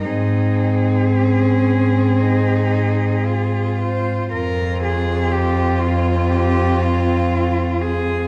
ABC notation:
X:1
M:4/4
L:1/8
Q:1/4=59
K:Ab
V:1 name="Cello"
A6- A c | [K:Fm] B A G F G F2 A |]
V:2 name="Cello"
E2 D2 E2 F2 | [K:Fm] F8 |]
V:3 name="Cello"
C8 | [K:Fm] C8 |]
V:4 name="Cello" clef=bass
A,,8 | [K:Fm] F,,8 |]